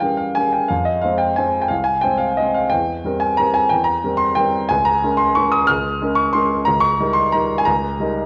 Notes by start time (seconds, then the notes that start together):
Already playing: E3 F5
0.00 G3 C#4 A#4 G5
0.17 F5
0.35 G3 C#4 A#4 G#5
0.53 G5
0.68 F2 F5
0.85 D#5
1.02 G#3 C4 C5 F5
1.18 G5
1.36 G#3 C4 C5 G#5
1.62 G5
1.68 C2 F5
1.84 G#5
2.01 G#3 C4 C5 G5
2.17 F5
2.37 G#3 C4 C5 D#5
2.54 F5
2.69 E2 G5
3.04 G3 C4 A#4
3.20 G#5
3.37 G3 C4 A#4 A#5
3.54 G#5
3.69 E2 G5
3.84 A#5
4.04 G3 C4 A#4
4.17 C6
4.36 G3 C4 A#4 G5
4.69 C#2 G#5
4.85 A#5
5.04 G#3 C#4 A#4
5.17 C6
5.35 G#3 C#4 A#4 C#6
5.52 D#6
5.67 C#2 F6
6.01 G#3 C#4 A#4
6.15 C#6
6.33 G#3 C#4 A#4 C6
6.65 C#2 A#5
6.80 C#6
7.00 G3 D#4 A#4
7.13 C6
7.32 G3 D#4 A#4 A#5
7.58 G#5
7.65 C#2 A#5
8.00 G3 D#4 A#4